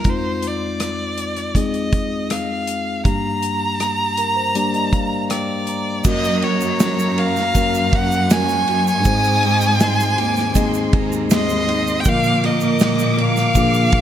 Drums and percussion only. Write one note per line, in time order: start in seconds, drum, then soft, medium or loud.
0.04 kick medium
0.04 closed hi-hat medium
0.42 closed hi-hat medium
0.80 cross-stick medium
0.80 closed hi-hat medium
1.18 closed hi-hat medium
1.36 cross-stick soft
1.36 closed hi-hat soft
1.55 kick medium
1.55 closed hi-hat medium
1.74 closed hi-hat soft
1.93 kick medium
1.93 closed hi-hat medium
2.30 cross-stick medium
2.30 closed hi-hat medium
2.67 closed hi-hat medium
3.05 kick medium
3.05 closed hi-hat medium
3.43 closed hi-hat medium
3.80 cross-stick medium
3.80 closed hi-hat medium
4.17 closed hi-hat medium
4.55 closed hi-hat medium
4.74 closed hi-hat soft
4.93 kick medium
4.93 closed hi-hat medium
5.30 cross-stick loud
5.30 closed hi-hat medium
5.67 closed hi-hat medium
6.04 kick loud
6.04 crash medium
6.04 shaker medium
6.24 shaker soft
6.42 ride medium
6.61 shaker soft
6.80 snare loud
6.80 ride medium
6.80 shaker medium
6.99 shaker soft
7.18 ride medium
7.36 snare soft
7.36 shaker soft
7.55 kick medium
7.55 ride medium
7.55 shaker medium
7.74 shaker soft
7.93 kick loud
7.93 ride medium
8.12 shaker medium
8.30 snare loud
8.30 ride medium
8.30 shaker medium
8.49 shaker soft
8.68 ride medium
8.87 shaker soft
9.04 kick loud
9.04 ride medium
9.04 shaker medium
9.24 shaker soft
9.43 ride medium
9.61 shaker soft
9.80 snare loud
9.80 ride medium
9.80 shaker medium
10.00 shaker medium
10.18 ride medium
10.36 snare soft
10.36 shaker soft
10.55 kick medium
10.55 ride medium
10.55 shaker medium
10.74 shaker soft
10.93 kick loud
10.93 ride medium
11.12 shaker medium
11.30 snare loud
11.30 ride medium
11.30 shaker medium
11.49 shaker soft
11.69 ride medium
11.87 shaker soft
12.04 kick loud
12.04 ride medium
12.04 shaker medium
12.24 shaker soft
12.44 ride medium
12.60 shaker soft
12.79 snare loud
12.79 ride medium
12.79 shaker medium
12.99 shaker medium
13.18 ride medium
13.36 snare soft
13.36 shaker soft
13.55 kick medium
13.55 ride medium
13.55 shaker medium
13.74 shaker soft
13.92 kick loud
13.92 ride medium